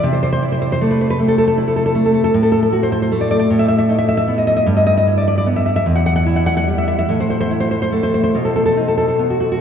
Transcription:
\new Staff \with { instrumentName = "Nylon-string guitar" } { \time 6/8 \key a \minor \tempo 4. = 50 << { r32 c''32 c''32 c''32 r32 c''32 c''32 c''32 r32 b'32 b'32 b'32 r32 a'32 a'32 a'32 r32 a'32 a'32 a'32 r32 a'32 a'32 a'32 | \key e \minor r32 a'32 a'32 a'32 r32 c''32 c''32 c''32 r32 d''32 d''32 d''32 r32 e''32 e''32 e''32 r32 e''32 e''32 e''32 r32 dis''32 dis''32 dis''32 | r32 dis''32 dis''32 dis''32 r32 d''32 d''32 d''32 r32 e''32 e''32 e''32 r32 fis''32 fis''32 fis''32 r32 fis''32 fis''32 fis''32 r32 e''32 e''32 e''32 | r32 c''32 c''32 c''32 r32 c''32 c''32 c''32 r32 c''32 c''32 c''32 r32 a'32 a'32 a'32 r32 a'32 a'32 a'32 r32 fis'32 fis'32 fis'32 | } \\ { c8 e'8 a8 a8 e'8 a8 | a,8 fis'8 a8 a,8 dis'8 b8 | g,8 e'8 b8 e,8 e'8 g8 | a,8 e'8 a8 b,8 dis'8 b8 | } >> }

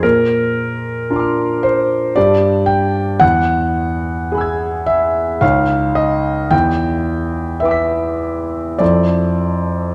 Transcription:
\new Staff \with { instrumentName = "Grand piano" } { \time 3/4 \key e \phrygian \tempo 4 = 54 << { bes,4 <d' f' bes'' c''' d''' f'''>4 <g, d' g'>4 | e,4 <e' gis' gis'' b'' e''' gis'''>4 <des, ees' des''>4 | e,4 <e' b' g'' d''' e''' b'''>4 <f, e' a'>4 | } \\ { bes'4. c''8 d''8 g''8 | fis''4. e''8 f''8 ees''8 | g''4 e''4 d''4 | } >> }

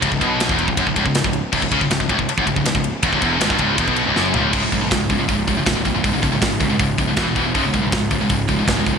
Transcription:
<<
  \new Staff \with { instrumentName = "Distorted electric guitar" } { \clef bass \time 4/4 \key cis \minor \tempo 4 = 160 cis,16 cis,16 b,8. e,8 cis,16 fis,16 cis,16 cis,16 cis,8 cis,8 r16 | cis,16 cis,16 cis16 cis,16 cis,16 cis,16 cis,16 cis,16 r16 fis,16 cis,16 cis,16 cis,16 cis,8 r16 | e,16 cis,16 e,8 gis,16 g,16 cis,8 e,16 b,8 cis,16 fis,8 cis,8 | <cis, gis, cis>16 <cis, gis,>16 <cis, gis,>16 <cis, gis,>16 <cis, gis,>8 <cis, gis,>16 <cis, gis,>16 <cis, gis,>8 <cis, gis,>16 <cis, gis,>16 <cis, gis,>16 <cis, gis,>16 <cis, gis,>16 <cis, gis,>16 |
<cis, gis,>16 <cis, gis,>16 <cis, gis,>16 <cis, gis,>16 <cis, gis,>8 <cis, gis,>16 <cis, gis,>16 <cis, gis,>8 <cis, gis,>16 <cis, gis,>16 <e, b, e>16 <e, b,>16 <e, b, e>16 <e, b,>16 | <cis, gis, cis>16 <cis, gis,>16 <cis, gis,>16 <cis, gis,>16 <cis, gis,>8 <cis, gis,>16 <cis, gis,>16 <cis, gis,>8 <cis, gis,>16 <cis, gis,>16 <cis, gis,>16 <cis, gis,>16 <cis, gis,>16 r16 | }
  \new Staff \with { instrumentName = "Distorted electric guitar" } { \clef bass \time 4/4 \key cis \minor cis,16 cis,16 b,8. e,8 cis,16 fis,16 cis,16 cis,16 cis,8 cis,8 r16 | cis,16 cis,16 cis16 cis,16 cis,16 cis,16 cis,16 cis,16 r16 fis,16 cis,16 cis,16 cis,16 cis,8 r16 | e,16 cis,16 e,8 gis,16 g,16 cis,8 e,16 b,8 cis,16 fis,8 cis,8 | <cis, gis, cis>16 <cis, gis,>16 <cis, gis,>16 <cis, gis,>16 <cis, gis,>8 <cis, gis,>16 <cis, gis,>16 <cis, gis,>8 <cis, gis,>16 <cis, gis,>16 <cis, gis,>16 <cis, gis,>16 <cis, gis,>16 <cis, gis,>16 |
<cis, gis,>16 <cis, gis,>16 <cis, gis,>16 <cis, gis,>16 <cis, gis,>8 <cis, gis,>16 <cis, gis,>16 <cis, gis,>8 <cis, gis,>16 <cis, gis,>16 <e, b, e>16 <e, b,>16 <e, b, e>16 <e, b,>16 | <cis, gis, cis>16 <cis, gis,>16 <cis, gis,>16 <cis, gis,>16 <cis, gis,>8 <cis, gis,>16 <cis, gis,>16 <cis, gis,>8 <cis, gis,>16 <cis, gis,>16 <cis, gis,>16 <cis, gis,>16 <cis, gis,>16 <cis, gis,>16 | }
  \new Staff \with { instrumentName = "Picked electric bass" } { \clef bass \time 4/4 \key cis \minor cis,,16 cis,,16 b,,8. e,,8 cis,,16 fis,,16 cis,,16 cis,,16 cis,,8 cis,,8 r16 | cis,,16 cis,,16 cis,16 cis,,16 cis,,16 cis,,16 cis,,16 cis,,16 r16 fis,,16 cis,,16 cis,,16 cis,,16 cis,,8 r16 | e,,16 cis,,16 e,,8 gis,,16 g,,16 cis,,8 e,,16 b,,8 cis,,16 fis,,8 cis,,8 | cis,,8 b,,8 cis,,8 cis,8 cis,,4 cis,,8 cis,,8 |
cis,,8 cis,,8 gis,,8 cis,8 cis,,8 cis,,8 e,,8 e,,8 | cis,,8 b,,8 cis,,8 cis,8 cis,,4 cis,,8 cis,,8 | }
  \new DrumStaff \with { instrumentName = "Drums" } \drummode { \time 4/4 <bd cymr>16 bd16 <bd cymr>8 <cymr sn>16 bd16 cymr16 bd16 <bd cymr>16 bd16 <bd cymr>16 bd16 <cymr sn>16 bd16 cymr8 | <cymc bd>16 bd16 <bd cymr>16 bd16 <cymr sn>16 bd16 <bd cymr>16 bd16 cymr16 bd16 <bd cymr>16 bd16 <cymr sn>16 bd16 cymr8 | <bd cymr>16 bd16 <bd cymr>8 <cymr sn>16 bd16 <bd cymr>8 <bd cymr>16 bd16 cymr8 sn8 tomfh8 | <cymc bd>8 <hho bd>8 <hho bd sn>8 <hho bd>8 <hho bd>8 <hho bd>8 <hho bd sn>8 <hho bd>8 |
<hho bd>8 <hho bd>8 <hho bd sn>8 <hho bd>8 <hho bd>8 <hho bd>8 <hho bd sn>8 <hho bd>8 | <hho bd>8 <hho bd>8 <hho bd sn>8 <hho bd>8 <hho bd>8 <hho bd>8 <hho bd sn>8 <hho bd>8 | }
>>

